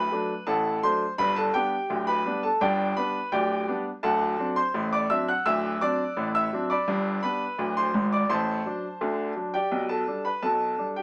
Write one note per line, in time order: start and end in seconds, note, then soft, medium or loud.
0.00 0.44 B4 medium
0.00 0.45 B5 medium
0.12 0.31 F#3 medium
0.12 0.32 A3 soft
0.12 0.32 D4 soft
0.47 0.78 A1 medium
0.47 0.78 A2 medium
0.47 0.81 A4 medium
0.47 0.81 F#5 medium
0.47 0.81 A5 medium
0.83 1.03 F#3 soft
0.83 1.03 A3 soft
0.83 1.04 D4 soft
0.83 1.17 C5 medium
0.83 1.12 C6 loud
1.18 1.49 G1 medium
1.18 1.49 G2 medium
1.18 1.36 B4 medium
1.18 1.37 B5 loud
1.36 1.54 A4 medium
1.36 1.55 A5 medium
1.54 1.74 G3 soft
1.54 1.74 B3 soft
1.54 1.74 D4 soft
1.54 2.05 G4 medium
1.54 2.05 G5 medium
1.90 2.20 D1 medium
1.90 2.20 D2 medium
2.07 2.41 B4 medium
2.07 2.41 B5 medium
2.25 2.45 G3 soft
2.25 2.46 B3 medium
2.25 2.46 D4 medium
2.43 2.61 A4 medium
2.43 2.61 A5 medium
2.61 2.91 G1 medium
2.61 2.92 G2 medium
2.61 2.95 G4 medium
2.61 2.95 D5 medium
2.61 2.95 G5 medium
2.97 3.17 G3 soft
2.97 3.17 B3 soft
2.97 3.17 D4 medium
2.97 3.31 B4 medium
2.97 3.31 B5 loud
3.32 3.63 D1 medium
3.32 3.63 D2 medium
3.32 3.83 G4 medium
3.32 3.83 D5 medium
3.32 3.75 G5 medium
3.68 3.87 G3 soft
3.68 3.88 B3 medium
3.68 3.88 D4 medium
4.03 4.34 D1 medium
4.03 4.34 D2 medium
4.03 4.54 A4 medium
4.03 4.54 F#5 medium
4.03 4.46 A5 loud
4.39 4.58 F#3 soft
4.39 4.59 C4 soft
4.39 4.59 D4 medium
4.56 4.90 C5 medium
4.56 4.90 C6 medium
4.74 5.05 A1 medium
4.74 5.05 A2 medium
4.93 5.10 D5 medium
4.93 5.10 D6 medium
5.10 5.30 F#3 soft
5.10 5.30 C4 soft
5.10 5.30 D4 medium
5.10 5.27 E5 medium
5.10 5.28 E6 loud
5.28 5.45 F#5 medium
5.28 5.46 F#6 medium
5.46 5.76 D1 medium
5.46 5.76 D2 medium
5.46 5.79 E5 medium
5.46 5.79 E6 loud
5.81 6.01 F#3 soft
5.81 6.01 C4 medium
5.81 6.01 D4 medium
5.81 6.31 D5 medium
5.81 6.24 D6 medium
6.17 6.47 A1 medium
6.17 6.47 A2 medium
6.35 6.68 E5 medium
6.35 6.63 E6 loud
6.53 6.72 F#3 soft
6.53 6.72 C4 soft
6.53 6.73 D4 medium
6.70 7.20 D5 medium
6.70 7.20 B5 medium
6.70 7.13 D6 medium
6.88 7.18 G1 medium
6.88 7.18 G2 medium
7.23 7.43 G3 soft
7.23 7.43 B3 soft
7.23 7.43 D4 soft
7.23 7.73 B4 medium
7.23 7.66 B5 medium
7.59 7.89 D1 medium
7.59 7.89 D2 medium
7.77 8.11 C5 medium
7.77 8.05 C6 medium
7.94 8.23 G#1 medium
7.94 8.23 G#2 medium
8.12 8.29 D5 medium
8.12 8.30 D6 medium
8.29 8.60 A1 medium
8.29 8.60 A2 medium
8.29 9.50 C5 medium
8.29 9.50 A5 medium
8.29 9.29 C6 medium
8.66 8.85 F#3 soft
8.66 8.86 D4 soft
9.01 9.31 D2 medium
9.01 9.31 D3 medium
9.36 9.56 F#3 soft
9.36 9.56 D4 soft
9.54 9.88 G4 medium
9.54 9.88 D5 medium
9.54 9.82 G5 medium
9.72 10.02 B1 medium
9.72 10.02 B2 medium
9.89 10.23 A4 medium
9.89 10.23 A5 medium
10.07 10.27 G3 soft
10.07 10.27 D4 soft
10.25 10.42 B4 medium
10.25 10.43 B5 medium
10.42 10.73 B1 medium
10.42 10.73 B2 medium
10.42 10.93 A4 medium
10.42 10.86 A5 medium
10.78 10.98 G3 soft
10.78 10.98 D4 soft
10.96 11.03 G4 soft
10.96 11.03 G5 medium